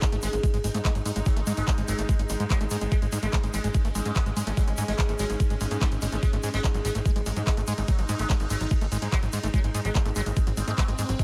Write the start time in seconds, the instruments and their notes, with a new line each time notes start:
Already playing: ambient pad G#3 D#4
0.02 sitar G#2, acid bass G#3, kick, clap, closed hi-hat, ride, shaker
0.12 analog synth bass G#1, sitar G#2, acid bass A3, closed hi-hat, shaker
0.22 analog synth bass G#1, acid bass G#3, sitar G#3, open hi-hat, ride, shaker
0.33 analog synth bass G#1, sitar G#2, acid bass G#3, closed hi-hat, shaker
0.43 sitar G#2, acid bass G#3, kick, closed hi-hat, ride, shaker
0.54 analog synth bass G#1, acid bass G#3, closed hi-hat, shaker
0.64 analog synth bass G#1, sitar G#2, acid bass G#3, open hi-hat, ride, shaker
0.74 analog synth bass G#2, sitar G#2, acid bass A3, closed hi-hat, shaker
0.85 acid bass G#3, sitar G#3, kick, clap, closed hi-hat, ride, shaker
0.95 analog synth bass G#1, sitar G#2, acid bass G#3, closed hi-hat, shaker
1.05 sitar G#2, analog synth bass G#2, acid bass G#3, open hi-hat, ride, shaker
1.16 analog synth bass G#1, sitar G#2, acid bass G#3, closed hi-hat, shaker
1.26 sitar F#3, acid bass G#3, kick, closed hi-hat, ride, shaker
1.36 analog synth bass G#1, sitar G#2, acid bass A3, closed hi-hat, shaker
1.47 analog synth bass G#2, sitar G#2, acid bass G#3, open hi-hat, ride, shaker
1.57 analog synth bass G#1, acid bass G#3, sitar G#3, closed hi-hat, shaker
1.68 sitar G#2, acid bass G#3, kick, clap, closed hi-hat, ride, shaker
1.77 analog synth bass G#1, sitar G#2, acid bass G#3, closed hi-hat, shaker
1.88 analog synth bass G#1, sitar F#3, acid bass G#3, open hi-hat, ride, shaker
1.98 analog synth bass G#1, sitar G#2, acid bass A3, closed hi-hat, shaker
2.09 sitar G#2, acid bass G#3, kick, closed hi-hat, ride, shaker
2.19 analog synth bass G#1, acid bass G#3, closed hi-hat, shaker
2.29 analog synth bass G#1, sitar G#2, acid bass G#3, open hi-hat, ride, shaker
2.40 analog synth bass G#2, sitar G#2, acid bass G#3, closed hi-hat, shaker
2.50 sitar F#3, acid bass G#3, kick, clap, closed hi-hat, ride, shaker
2.60 analog synth bass G#1, sitar G#2, acid bass A3, closed hi-hat, shaker
2.70 analog synth bass G#2, sitar G#2, acid bass G#3, open hi-hat, ride, shaker
2.81 analog synth bass G#1, sitar G#2, acid bass G#3, closed hi-hat, shaker
2.92 sitar G#3, acid bass G#3, ambient pad C#4, kick, closed hi-hat, ride, shaker
3.02 analog synth bass G#1, sitar G#2, acid bass G#3, closed hi-hat, shaker
3.12 sitar G#2, analog synth bass G#2, acid bass G#3, open hi-hat, ride, shaker
3.22 analog synth bass G#1, sitar G#3, acid bass A3, closed hi-hat, shaker
3.33 sitar G#2, acid bass G#3, kick, clap, closed hi-hat, ride, shaker
3.43 analog synth bass G#1, sitar G#2, acid bass G#3, closed hi-hat, shaker
3.54 analog synth bass G#1, acid bass G#3, sitar G#3, open hi-hat, ride, shaker
3.64 analog synth bass G#1, sitar G#2, acid bass G#3, closed hi-hat, shaker
3.74 sitar G#2, acid bass G#3, kick, closed hi-hat, ride, shaker
3.85 analog synth bass G#1, acid bass A3, closed hi-hat, shaker
3.95 analog synth bass G#1, sitar G#2, acid bass G#3, open hi-hat, ride, shaker
4.05 analog synth bass G#2, sitar G#2, acid bass G#3, closed hi-hat, shaker
4.16 acid bass G#3, sitar G#3, kick, clap, closed hi-hat, ride, shaker
4.26 analog synth bass G#1, sitar G#2, acid bass G#3, closed hi-hat, shaker
4.37 analog synth bass G#2, sitar G#2, acid bass G#3, open hi-hat, ride, shaker
4.47 analog synth bass G#1, sitar G#2, acid bass A3, closed hi-hat, shaker
4.57 sitar F#3, acid bass G#3, kick, closed hi-hat, ride, shaker
4.67 analog synth bass G#1, sitar G#2, acid bass G#3, closed hi-hat, shaker
4.77 sitar G#2, analog synth bass G#2, acid bass G#3, open hi-hat, ride, shaker
4.88 analog synth bass G#1, acid bass G#3, sitar G#3, closed hi-hat, shaker
4.99 sitar G#2, acid bass G#3, kick, clap, closed hi-hat, ride, shaker
5.09 analog synth bass G#1, sitar G#2, acid bass A3, closed hi-hat, shaker
5.19 analog synth bass G#1, sitar F#3, acid bass G#3, open hi-hat, ride, shaker
5.30 analog synth bass G#1, sitar G#2, acid bass G#3, closed hi-hat, shaker
5.40 sitar G#2, acid bass G#3, kick, closed hi-hat, ride, shaker
5.50 analog synth bass G#1, acid bass G#3, closed hi-hat, shaker
5.61 analog synth bass G#1, sitar G#2, acid bass G#3, open hi-hat, ride, shaker
5.71 sitar G#2, analog synth bass G#2, acid bass A3, closed hi-hat, shaker
5.81 sitar D#3, acid bass G#3, kick, clap, closed hi-hat, ride, shaker
5.91 analog synth bass G#1, sitar G#2, closed hi-hat, shaker
6.02 analog synth bass G#1, sitar G#2, acid bass G#3, open hi-hat, ride, shaker
6.12 analog synth bass G#1, sitar G#2, acid bass A3, closed hi-hat, shaker
6.23 acid bass G#3, sitar G#3, ambient pad D#4, kick, closed hi-hat, ride, shaker
6.33 analog synth bass G#1, sitar G#2, acid bass A3, closed hi-hat, shaker
6.43 analog synth bass G#2, sitar G#2, acid bass G#3, open hi-hat, ride, shaker
6.54 analog synth bass G#1, acid bass G#3, sitar G#3, closed hi-hat, shaker
6.64 sitar G#2, acid bass G#3, kick, clap, closed hi-hat, ride, shaker
6.74 analog synth bass G#1, sitar G#2, acid bass F#3, closed hi-hat, shaker
6.85 analog synth bass G#1, acid bass G#3, sitar G#3, open hi-hat, ride, shaker
6.95 analog synth bass G#1, sitar G#2, acid bass A3, closed hi-hat, shaker
7.06 sitar G#2, acid bass G#3, kick, closed hi-hat, ride, shaker
7.16 analog synth bass G#1, acid bass G#3, closed hi-hat, shaker
7.26 analog synth bass G#1, sitar G#2, acid bass G#3, open hi-hat, ride, shaker
7.37 analog synth bass G#2, sitar G#2, acid bass F#3, closed hi-hat, shaker
7.47 acid bass G#3, sitar G#3, kick, clap, closed hi-hat, ride, shaker
7.57 analog synth bass G#1, sitar G#2, acid bass A3, closed hi-hat, shaker
7.67 analog synth bass G#2, sitar G#2, acid bass G#3, open hi-hat, ride, shaker
7.78 analog synth bass G#1, sitar G#2, acid bass G#3, closed hi-hat, shaker
7.88 sitar F#3, acid bass G#3, kick, closed hi-hat, ride, shaker
7.98 analog synth bass G#1, sitar G#2, acid bass F#3, closed hi-hat, shaker
8.09 analog synth bass G#2, sitar G#2, acid bass G#3, open hi-hat, ride, shaker
8.19 analog synth bass G#1, sitar G#3, acid bass A3, closed hi-hat, shaker
8.30 sitar G#2, acid bass G#3, kick, clap, closed hi-hat, ride, shaker
8.40 analog synth bass G#1, sitar G#2, acid bass G#3, closed hi-hat, shaker
8.50 analog synth bass G#1, sitar F#3, acid bass G#3, open hi-hat, ride, shaker
8.61 analog synth bass G#1, sitar G#2, acid bass F#3, closed hi-hat, shaker
8.71 sitar G#2, acid bass G#3, kick, closed hi-hat, ride, shaker
8.81 analog synth bass G#1, acid bass A3, closed hi-hat, shaker
8.92 analog synth bass G#1, sitar G#2, acid bass G#3, open hi-hat, ride, shaker
9.02 analog synth bass G#2, sitar G#2, acid bass G#3, closed hi-hat, shaker
9.12 sitar F#3, acid bass G#3, kick, clap, closed hi-hat, ride, shaker
9.23 analog synth bass G#1, sitar G#2, acid bass F#3, closed hi-hat, shaker
9.33 analog synth bass G#2, sitar G#2, acid bass G#3, open hi-hat, ride, shaker
9.43 analog synth bass G#1, sitar G#2, acid bass A3, closed hi-hat, shaker
9.54 sitar F#3, acid bass G#3, ambient pad C4, kick, closed hi-hat, ride, shaker
9.64 analog synth bass G#1, sitar G#2, acid bass G#3, closed hi-hat, shaker
9.74 analog synth bass G#2, sitar G#2, acid bass G#3, open hi-hat, ride, shaker
9.85 analog synth bass G#1, acid bass F#3, sitar G#3, closed hi-hat, shaker
9.95 sitar G#2, acid bass G#3, kick, clap, closed hi-hat, ride, shaker
10.05 analog synth bass G#1, sitar G#2, acid bass A3, closed hi-hat, shaker
10.16 analog synth bass G#1, sitar F#3, acid bass G#3, open hi-hat, ride, shaker
10.26 analog synth bass G#1, sitar G#2, acid bass G#3, closed hi-hat, shaker
10.36 sitar G#2, acid bass G#3, kick, closed hi-hat, ride, shaker
10.47 analog synth bass G#1, acid bass F#3, closed hi-hat, shaker
10.57 analog synth bass G#1, sitar G#2, acid bass G#3, open hi-hat, ride, shaker
10.68 analog synth bass G#2, sitar G#2, acid bass A3, closed hi-hat, shaker
10.78 sitar F#3, acid bass G#3, kick, clap, closed hi-hat, ride, shaker
10.88 analog synth bass G#1, sitar G#2, acid bass G#3, closed hi-hat, shaker
10.98 analog synth bass G#2, sitar G#2, acid bass G#3, open hi-hat, ride, shaker
11.09 analog synth bass G#1, sitar G#2, acid bass F#3, closed hi-hat, shaker
11.19 acid bass G#3, sitar G#3, kick, closed hi-hat, ride, shaker